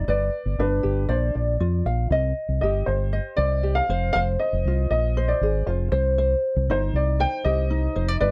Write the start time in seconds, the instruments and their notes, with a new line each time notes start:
Already playing: ukulele D5, upright piano D#5
0.07 fingered electric bass G1, ukulele B4 D5, upright piano D5
0.45 fingered electric bass G1
0.58 fingered electric bass G1, ukulele D4, upright piano B4
0.83 fingered electric bass G1, ukulele G4
1.09 fingered electric bass A#1, upright piano C5, ukulele D5
1.35 fingered electric bass A#1, upright piano D5
1.60 fingered electric bass F2, ukulele F4
1.85 fingered electric bass A#1, ukulele F5
2.10 fingered electric bass C2, ukulele D#5
2.48 fingered electric bass C2
2.61 fingered electric bass G1, ukulele G4, upright piano D#5
2.86 fingered electric bass G1, upright piano C5
3.13 ukulele D#5
3.37 fingered electric bass C2, ukulele C5, upright piano D5
3.63 ukulele G4
3.75 upright piano F5
3.89 fingered electric bass F1, ukulele C5
4.13 fingered electric bass F1, ukulele C5, upright piano F5
4.39 upright piano D#5
4.53 fingered electric bass F1
4.65 fingered electric bass C2, ukulele F4
4.90 fingered electric bass A#1, upright piano D#5
5.17 ukulele C5
5.28 upright piano D5
5.41 fingered electric bass G#1, ukulele G#4
5.66 fingered electric bass F1, ukulele F4, upright piano C5
5.92 fingered electric bass C2, ukulele C5
6.18 ukulele C5
6.56 fingered electric bass C2
6.68 fingered electric bass G1, ukulele D#4, upright piano C5
6.93 fingered electric bass C2, upright piano D5
7.20 ukulele C5, upright piano G5
7.45 fingered electric bass C2, ukulele G4, upright piano D#5
7.70 ukulele D#4
7.96 fingered electric bass F1, ukulele C5
8.08 ukulele D5
8.21 fingered electric bass G1, ukulele B4, upright piano D5